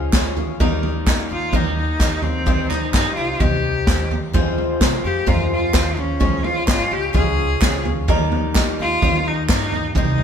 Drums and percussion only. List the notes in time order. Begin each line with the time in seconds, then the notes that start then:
0.13 kick, snare, clap
0.37 floor tom
0.60 kick, floor tom
0.83 floor tom
1.07 kick, snare, clap
1.53 kick, floor tom
2.00 kick, snare, clap
2.22 floor tom
2.46 kick, floor tom
2.71 clap, floor tom
2.94 kick, snare, clap
3.40 kick, floor tom
3.87 kick, snare, clap
4.11 floor tom
4.34 kick, floor tom
4.58 floor tom
4.81 kick, snare, clap
5.27 kick, floor tom
5.74 kick, snare, clap
5.97 floor tom
6.20 kick, floor tom
6.44 floor tom
6.68 kick, snare, clap
7.14 kick, floor tom
7.62 kick, snare, clap
7.85 floor tom
8.08 kick, floor tom
8.32 floor tom
8.55 kick, snare, clap
9.02 kick, floor tom
9.49 kick, snare, clap
9.72 floor tom
9.95 kick, floor tom
10.18 floor tom